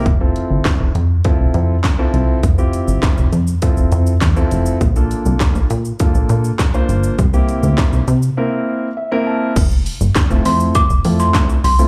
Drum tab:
CC |----------------|----------------|----------------|----------------|
HH |x-x-x-x-x-x-x-x-|x-x-x-x-x-x-x-x-|x-x-x-x-x-x-x-x-|x-x-x-x---------|
SH |----------------|xxxxxxxxxxxxxxxx|xxxxxxxxxxxxxxxx|xxxxxxxx--------|
CP |----x-------x---|----x-------x---|----x-------x---|----x-----------|
SD |----o-------o---|----o-------o---|----o-------o---|----o-----------|
BD |o---o---o---o---|o---o---o---o---|o---o---o---o---|o---o-----------|

CC |x---------------|
HH |x-o-x-o-x-o-x-o-|
SH |xxxxxxxxxxxxxxxx|
CP |----x-------x---|
SD |----o-------o---|
BD |o---o---o---o---|